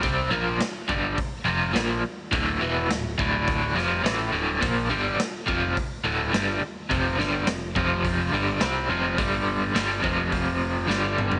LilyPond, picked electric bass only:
\new Staff \with { instrumentName = "Picked electric bass" } { \clef bass \time 4/4 \key f \major \tempo 4 = 105 c,8 bes,,8 r8 g,,8 r8 f,,8 bes,,8 r8 | d,,8 e,,8 d,,8 d,,4 f,,8 a,,8 d,,8 | bes,,8 g,,8 r8 f,,8 r8 d,,8 g,,8 r8 | f,,8 g,,8 f,,8 f,,4 g,,8 c,8 f,,8 |
g,,4 g,,8 f,,4. g,,4 | }